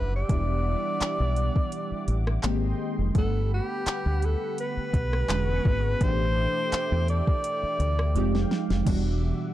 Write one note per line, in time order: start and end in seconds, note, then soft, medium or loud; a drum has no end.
0.00 0.22 F#1 medium
0.00 0.26 B2 medium
0.00 0.25 E3 medium
0.00 0.26 G3 medium
0.00 0.26 D4 medium
0.00 2.40 G4 medium
0.00 0.14 B4 medium
0.00 2.40 E5 medium
0.00 0.27 F#5 medium
0.00 2.40 F#5 medium
0.00 2.40 D6 medium
0.16 2.25 D5 loud
0.28 0.74 E1 loud
0.28 2.39 E3 medium
0.28 2.40 G3 medium
0.28 2.40 B3 medium
0.28 2.41 D4 medium
0.28 kick loud
0.28 closed hi-hat medium
0.32 2.41 E4 medium
1.01 muted fingered electric bass stroke medium
1.01 clap loud
1.01 closed hi-hat medium
1.20 1.49 B1 medium
1.36 closed hi-hat medium
1.56 kick medium
1.72 closed hi-hat medium
1.92 muted fingered electric bass stroke soft
2.08 2.37 A1 medium
2.08 closed hi-hat medium
2.27 cross-stick loud
2.43 2.72 G#1 loud
2.43 3.15 D#3 medium
2.43 3.14 G#3 medium
2.43 3.15 G#3 medium
2.43 3.15 A#3 medium
2.43 3.16 C4 medium
2.43 3.16 G4 medium
2.43 3.15 D#5 medium
2.43 3.14 G5 medium
2.43 3.14 C6 medium
2.43 clap loud
2.43 closed hi-hat medium
2.99 3.12 F1 medium
3.14 3.59 G1 loud
3.14 5.25 D3 medium
3.14 5.25 G3 medium
3.14 5.26 A3 medium
3.14 5.26 B3 medium
3.14 5.27 G4 medium
3.14 5.98 B4 medium
3.14 5.27 F#5 medium
3.14 5.27 B5 medium
3.14 kick loud
3.14 closed hi-hat medium
3.18 3.50 A4 medium
3.54 4.27 G4 medium
3.86 muted fingered electric bass stroke medium
3.86 clap loud
3.86 closed hi-hat medium
4.06 4.35 D2 medium
4.22 4.60 A4 medium
4.22 closed hi-hat medium
4.58 6.05 B4 loud
4.58 closed hi-hat medium
4.77 muted fingered electric bass stroke medium
4.94 5.22 B1 medium
4.94 kick medium
4.94 closed hi-hat medium
5.13 cross-stick loud
5.29 5.58 E1 loud
5.29 6.01 D3 medium
5.29 6.01 G#3 medium
5.29 6.01 B3 medium
5.29 6.02 C#4 medium
5.29 6.02 F#4 medium
5.29 6.00 G#4 medium
5.29 6.00 F#5 medium
5.29 6.00 C#6 medium
5.29 clap loud
5.29 closed hi-hat medium
5.65 5.94 G#1 medium
5.65 kick loud
6.00 6.45 A1 loud
6.00 8.12 B2 medium
6.00 8.11 E3 medium
6.00 8.11 A3 medium
6.00 8.12 D4 medium
6.00 8.13 G4 medium
6.00 8.13 A4 medium
6.00 7.09 C5 loud
6.00 8.13 E5 medium
6.00 8.13 G5 medium
6.00 8.13 D6 medium
6.00 kick loud
6.00 closed hi-hat medium
6.72 muted fingered electric bass stroke medium
6.72 clap loud
6.72 closed hi-hat medium
6.92 7.21 E2 medium
7.08 8.48 D5 loud
7.08 closed hi-hat medium
7.27 kick medium
7.44 closed hi-hat medium
7.63 muted fingered electric bass stroke soft
7.80 8.17 D2 medium
7.80 closed hi-hat medium
7.99 cross-stick loud
8.15 8.44 F1 loud
8.15 8.87 F3 medium
8.15 8.86 G#3 medium
8.15 8.87 G#3 medium
8.15 8.87 C4 medium
8.15 8.87 D#4 medium
8.15 8.88 G4 medium
8.15 8.86 F5 medium
8.15 8.86 G5 medium
8.15 closed hi-hat medium
8.35 snare medium
8.51 snare medium
8.70 8.83 F1 medium
8.70 snare medium
8.85 9.31 E1 loud
8.85 9.54 B2 medium
8.85 9.54 E3 medium
8.85 9.54 G3 medium
8.85 9.54 D4 medium
8.85 9.54 E5 medium
8.85 9.54 F#5 medium
8.85 9.54 D6 medium
8.85 kick loud
8.85 closed hi-hat medium
8.85 crash loud
8.89 9.54 F#4 medium